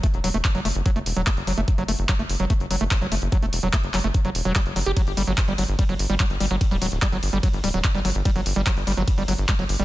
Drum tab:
RD |----------------|----------------|----------------|x---x---x---x---|
HH |xxoxxxoxxxoxxxox|xxoxxxoxxxoxxxox|xxoxxxoxxxoxxxox|xxoxxxoxxxoxxxox|
CP |----x-------x---|----x-------x---|----x-x-----x---|----x-------x---|
BD |o---o---o---o---|o---o---o---o---|o---o---o---o---|o---o---o---o---|

RD |x---x---x---x---|x---x---x---x---|
HH |xxoxxxoxxxoxxxox|xxoxxxoxxxoxxxox|
CP |----x-------x---|----x-------x---|
BD |o---o---o---o---|o---o---o---o---|